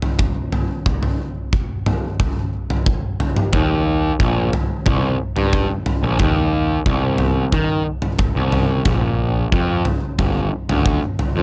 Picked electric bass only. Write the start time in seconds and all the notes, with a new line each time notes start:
3.54 D#2
4.20 A#1
4.86 C2
5.37 G2
6.03 A#1
6.20 D#2
6.86 C2
7.53 D#3
8.36 C2
8.86 A#1
9.53 F2
10.19 G1
10.70 D2
11.37 F2